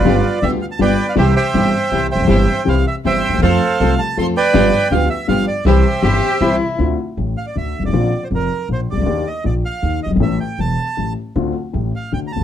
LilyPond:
<<
  \new Staff \with { instrumentName = "Bandoneon" } { \time 3/4 \key c \mixolydian \tempo 4 = 159 << { d''4 e''8 f''16 a''16 g''8. f''16 | e''8 g''2 g''8~ | g''4 f''8 e''8 g''4 | f''4. a''8 c'''8 g''8~ |
g''4 f''8 e''8 f''8 d''8 | e''2~ e''8 r8 | \key d \minor r4. f''16 d''16 e''8. d''16~ | d''8. c''16 bes'4 c''8 d''8~ |
d''8 ees''8 d''8 f''4 ees''8 | e''8 g''8 a''4. r8 | r4. f''8 g''16. bes''32 a''8 | } \\ { <f' b'>4 r4 <b' d''>4 | <g' c''>8 <c'' e''>2 <c'' e''>8~ | <c'' e''>4 r4 <c'' e''>4 | <a' c''>4. r4 <b' d''>8~ |
<b' d''>4 r2 | <g' c''>2~ <g' c''>8 r8 | r2. | r2. |
r2. | r2. | r2. | } >> }
  \new Staff \with { instrumentName = "Cello" } { \time 3/4 \key c \mixolydian r2. | r2. | r2. | r2. |
r2. | r4 g'4 e'4 | \key d \minor r2. | r2. |
r2. | r2. | r2. | }
  \new Staff \with { instrumentName = "String section" } { \time 3/4 \key c \mixolydian <b f' g'>8 r8 <b f' g'>8 r8 <b f' g'>8 r8 | <c' e' g'>8 r8 <c' e' g'>8 r8 <c' e' g'>8 r8 | <c' e' g'>8 r8 <c' e' g'>8 r8 <c' e' g'>8 r8 | <c' f' a'>8 r8 <c' f' a'>8 r8 <c' f' a'>8 r8 |
<b f' g'>8 r8 <b f' g'>8 r8 <b f' g'>8 r8 | <c' e' g'>8 r8 <c' e' g'>8 r8 <c' e' g'>8 r8 | \key d \minor r2. | r2. |
r2. | r2. | r2. | }
  \new Staff \with { instrumentName = "Grand piano" } { \clef bass \time 3/4 \key c \mixolydian <g,, g, d g b f'>8 r8 <d, d g b f'>8 r8 <g,, g, d g b f'>8 r8 | <c, c e g c' g'>8 r8 <g,, g, e g c' g'>8 r8 <c, c e g c' g'>8 r32 e,,32 f,,32 ges,,32 | <g,, g, e g c' g'>8 r8 <c, c e g c' g'>8 r8 <g,, g, e g c' g'>8 r32 d,32 ees,32 e,32 | <f, f a c' a'>8 r8 <c, c f a c' a'>8 r8 <f, f a c' a'>8 r8 |
<g,, g, f b d' g'>8 r8 <d, d f b d' g'>8 r8 <g,, g, f b d' g'>8 r8 | <c, c e g c' g'>8 r8 <g,, g, e g c' g'>8 r8 <c, c e g c' g'>8 r8 | \key d \minor <d, d a c' f'>8 r8 <a,, a,>8 r8 <d, d>8 r32 g,,32 gis,,32 a,,32 | <bes,, bes, d bes c' f'>8 r8 <f,, f,>8 r8 <bes,, bes,>8 r32 c,32 cis,32 d,32 |
<ees, ees bes d' g'>8 r8 <bes,, bes,>8 r8 <ees, ees>8 r32 fis,,32 g,,32 gis,,32 | <a,, a, e a cis' a'>8 r8 <e,, e,>8 r8 <a,, a,>8 r8 | <d, d a c' f'>8 r8 <a,, a,>8 r8 <d, d>8 r32 cis,32 r16 | }
  \new Staff \with { instrumentName = "Upright bass" } { \clef bass \time 3/4 \key c \mixolydian g,,16. r8 r32 d,16. r8 r32 g,,16. r8 r32 | c,16. r8 r32 g,,16. r8 r32 c,16. r16 e,,32 f,,32 ges,,32 | g,,16. r8 r32 c,16. r8 r32 g,,16. r16 d,32 ees,32 e,32 | f,16. r8 r32 c,16. r8 r32 f,16. r8 r32 |
g,,16. r8 r32 d,16. r8 r32 g,,16. r8 r32 | c,16. r8 r32 g,,16. r8 r32 c,16. r8 r32 | \key d \minor d,16. r8 r32 a,,16. r8 r32 d,16. r16 g,,32 gis,,32 a,,32 | bes,,16. r8 r32 f,,16. r8 r32 bes,,16. r16 c,32 cis,32 d,32 |
ees,16. r8 r32 bes,,16. r8 r32 ees,16. r16 fis,,32 g,,32 gis,,32 | a,,16. r8 r32 e,,16. r8 r32 a,,16. r8 r32 | d,16. r8 r32 a,,16. r8 r32 d,16. r16 cis,32 d,32 r32 | }
>>